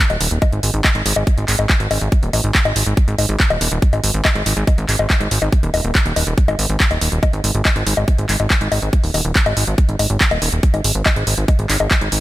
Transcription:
0.10 analog synth bass D#1, closed hi-hat, high bongo
0.21 analog synth bass D#1, open hi-hat
0.31 analog synth bass D#1, closed hi-hat
0.42 kick, closed hi-hat, high bongo
0.53 analog synth bass G#1, closed hi-hat
0.63 analog synth bass G#1, open hi-hat
0.74 analog synth bass G#1, closed hi-hat
0.84 kick, clap, closed hi-hat, high bongo
0.95 analog synth bass G#1, closed hi-hat
1.06 analog synth bass G#1, open hi-hat
1.16 analog synth bass G#1, high bongo
1.27 kick, closed hi-hat
1.38 analog synth bass G#1, closed hi-hat
1.48 analog synth bass G#1, clap, open hi-hat
1.59 analog synth bass G#1, closed hi-hat, high bongo
1.70 kick, clap, closed hi-hat
1.80 analog synth bass G#1, closed hi-hat
1.91 analog synth bass G#1, open hi-hat, high bongo
2.01 analog synth bass G#1, closed hi-hat
2.12 kick, closed hi-hat
2.23 analog synth bass D#1, closed hi-hat
2.33 analog synth bass A1, open hi-hat, high bongo
2.44 analog synth bass G#1, closed hi-hat
2.55 kick, clap, closed hi-hat
2.65 analog synth bass G#1, closed hi-hat, high bongo
2.76 analog synth bass G#1, open hi-hat
2.87 analog synth bass G#1, closed hi-hat
2.97 kick, closed hi-hat
3.08 analog synth bass G#1, closed hi-hat
3.18 analog synth bass G#1, open hi-hat, high bongo
3.29 analog synth bass G#1, closed hi-hat
3.40 kick, clap, closed hi-hat
3.50 analog synth bass D#1, closed hi-hat, high bongo
3.61 analog synth bass D#1, open hi-hat
3.72 analog synth bass D#1, closed hi-hat
3.82 kick, closed hi-hat
3.93 analog synth bass G#1, closed hi-hat, high bongo
4.04 analog synth bass G#1, open hi-hat
4.14 analog synth bass G#1, closed hi-hat
4.25 kick, clap, closed hi-hat, high bongo
4.35 analog synth bass G#1, closed hi-hat
4.46 analog synth bass G#1, open hi-hat
4.57 analog synth bass G#1
4.67 kick, closed hi-hat, high bongo
4.78 analog synth bass G#1, closed hi-hat
4.89 analog synth bass G#1, clap, open hi-hat
4.99 analog synth bass G#1, closed hi-hat, high bongo
5.10 kick, clap, closed hi-hat
5.21 analog synth bass G#1, closed hi-hat
5.31 analog synth bass G#1, open hi-hat
5.42 analog synth bass G#1, high bongo
5.52 kick, closed hi-hat
5.63 analog synth bass D#1, closed hi-hat
5.74 analog synth bass D#1, open hi-hat, high bongo
5.84 analog synth bass D#1, closed hi-hat
5.95 kick, clap, closed hi-hat
6.06 analog synth bass D#1, closed hi-hat
6.16 analog synth bass D#1, open hi-hat, high bongo
6.27 analog synth bass D#1, closed hi-hat
6.38 kick, closed hi-hat
6.48 analog synth bass G#1, closed hi-hat, high bongo
6.59 analog synth bass G#1, open hi-hat
6.69 analog synth bass G#1, closed hi-hat
6.80 kick, clap, closed hi-hat
6.91 analog synth bass D#1, closed hi-hat, high bongo
7.01 analog synth bass D#1, open hi-hat
7.12 analog synth bass D#1, closed hi-hat
7.23 kick, closed hi-hat, high bongo
7.33 analog synth bass G#1, closed hi-hat
7.44 analog synth bass G#1, open hi-hat
7.55 analog synth bass G#1, closed hi-hat
7.65 kick, clap, closed hi-hat, high bongo
7.76 analog synth bass G#1, closed hi-hat
7.87 analog synth bass G#1, open hi-hat
7.97 analog synth bass G#1, high bongo
8.08 kick, closed hi-hat
8.18 analog synth bass G#1, closed hi-hat
8.29 analog synth bass G#1, clap, open hi-hat
8.40 analog synth bass G#1, closed hi-hat, high bongo
8.50 kick, clap, closed hi-hat
8.61 analog synth bass G#1, closed hi-hat
8.72 analog synth bass G#1, open hi-hat, high bongo
8.82 analog synth bass G#1, closed hi-hat
8.93 kick, closed hi-hat
9.04 analog synth bass D#1, open hi-hat
9.14 analog synth bass D#1, open hi-hat, high bongo
9.25 analog synth bass D#1
9.36 kick, clap, closed hi-hat
9.46 analog synth bass G#1, closed hi-hat, high bongo
9.57 analog synth bass G#1, open hi-hat
9.67 analog synth bass G#1, closed hi-hat
9.78 kick, closed hi-hat
9.89 analog synth bass G#1, closed hi-hat
9.99 analog synth bass G#1, open hi-hat, high bongo
10.10 analog synth bass G#1, closed hi-hat
10.21 kick, clap, closed hi-hat
10.31 analog synth bass D#1, closed hi-hat, high bongo
10.42 analog synth bass D#1, open hi-hat
10.53 analog synth bass D#1, closed hi-hat
10.63 kick, closed hi-hat
10.74 analog synth bass G#1, closed hi-hat, high bongo
10.84 analog synth bass G#1, open hi-hat
10.95 analog synth bass G#1, closed hi-hat
11.06 kick, clap, closed hi-hat, high bongo
11.16 analog synth bass G#1, closed hi-hat
11.27 analog synth bass G#1, open hi-hat
11.38 analog synth bass G#1, closed hi-hat
11.48 kick, closed hi-hat, high bongo
11.59 analog synth bass G#1, closed hi-hat
11.70 analog synth bass G#1, clap, open hi-hat
11.80 analog synth bass G#1, high bongo
11.91 kick, clap, closed hi-hat
12.01 analog synth bass G#1, closed hi-hat
12.12 analog synth bass G#1, open hi-hat

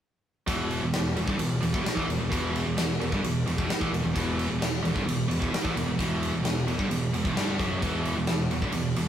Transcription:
0.47 picked electric bass E1, distorted electric guitar E2 B2 E3, kick, ride
0.71 ride
0.82 picked electric bass E1, distorted electric guitar E2 B2
0.93 picked electric bass E1, distorted electric guitar E2 B2, snare, ride
1.16 picked electric bass E1, distorted electric guitar E2 B2, ride
1.27 picked electric bass G1, distorted electric guitar G2 D3, kick
1.39 picked electric bass E1, distorted electric guitar E2 B2, ride
1.62 picked electric bass E1, distorted electric guitar E2 B2, ride
1.73 picked electric bass E1, distorted electric guitar E2 B2, kick
1.84 muted picked electric bass stroke, muted distorted electric guitar stroke, snare, ride
1.97 picked electric bass A1, distorted electric guitar A2 E3, kick, snare
2.08 picked electric bass E1, distorted electric guitar E2 B2, ride
2.19 picked electric bass E1, distorted electric guitar E2 B2
2.31 picked electric bass E1, distorted electric guitar E2 B2 E3, kick, ride
2.56 ride
2.64 picked electric bass E1, distorted electric guitar E2 B2
2.77 picked electric bass E1, distorted electric guitar E2 B2, snare, ride
3.01 picked electric bass E1, distorted electric guitar E2 B2, ride
3.12 picked electric bass G1, distorted electric guitar G2 D3, kick
3.24 picked electric bass E1, distorted electric guitar E2 B2, ride
3.46 picked electric bass E1, distorted electric guitar E2 B2, ride
3.58 picked electric bass E1, distorted electric guitar E2 B2, kick
3.69 muted distorted electric guitar stroke, muted picked electric bass stroke, snare, ride
3.81 picked electric bass A1, distorted electric guitar A2 E3, kick
3.92 picked electric bass E1, distorted electric guitar E2 B2, ride
4.03 picked electric bass E1, distorted electric guitar E2 B2
4.15 picked electric bass E1, distorted electric guitar E2 B2 E3, kick, ride
4.39 ride
4.50 picked electric bass E1, distorted electric guitar E2 B2
4.61 picked electric bass E1, distorted electric guitar E2 B2, snare, ride
4.84 picked electric bass E1, distorted electric guitar E2 B2, ride
4.95 picked electric bass G1, distorted electric guitar G2 D3, kick
5.06 picked electric bass E1, distorted electric guitar E2 B2, ride
5.29 picked electric bass E1, distorted electric guitar E2 B2, ride
5.40 picked electric bass E1, distorted electric guitar E2 B2, kick
5.52 muted picked electric bass stroke, muted distorted electric guitar stroke, snare, ride
5.64 picked electric bass A1, distorted electric guitar A2 E3, kick, snare
5.75 picked electric bass E1, distorted electric guitar E2 B2, ride
5.86 picked electric bass E1, distorted electric guitar E2 B2
5.98 picked electric bass E1, distorted electric guitar E2 B2 E3, kick, ride
6.23 ride
6.32 picked electric bass E1, distorted electric guitar E2 B2
6.43 picked electric bass E1, distorted electric guitar E2 B2, snare, ride
6.66 picked electric bass E1, distorted electric guitar E2 B2, ride
6.78 picked electric bass G1, distorted electric guitar G2 D3, kick
6.89 picked electric bass E1, distorted electric guitar E2 B2, ride
7.11 picked electric bass E1, distorted electric guitar E2 B2, ride
7.23 picked electric bass E1, distorted electric guitar E2 B2, kick
7.34 picked electric bass G1, distorted electric guitar G2 D3 G3, snare, ride
7.58 picked electric bass F#1, distorted electric guitar F#2 C#3 F#3, kick, ride
7.81 picked electric bass E1, distorted electric guitar E2 B2 E3, kick, ride
8.05 ride
8.15 picked electric bass E1, distorted electric guitar E2 B2
8.26 picked electric bass E1, distorted electric guitar E2 B2, snare, ride
8.49 picked electric bass E1, distorted electric guitar E2 B2, ride
8.62 picked electric bass G1, distorted electric guitar G2 D3, kick
8.72 picked electric bass E1, distorted electric guitar E2 B2, ride
8.96 picked electric bass E1, distorted electric guitar E2 B2, ride

